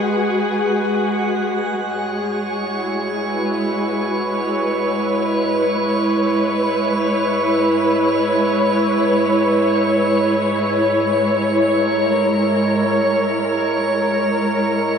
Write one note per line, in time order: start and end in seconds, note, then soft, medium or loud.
0.00 1.79 G#3 medium
0.00 5.40 F#4 medium
0.00 4.64 G#4 medium
0.00 1.80 B4 medium
0.00 1.81 F#5 medium
0.00 1.81 F#6 medium
1.77 14.98 G#2 medium
1.77 14.98 G#3 medium
1.77 14.98 C#5 medium
1.77 14.98 C#6 medium
2.59 14.98 E4 medium
3.23 12.17 B4 medium
4.21 14.98 C#5 medium
11.85 14.98 A#4 medium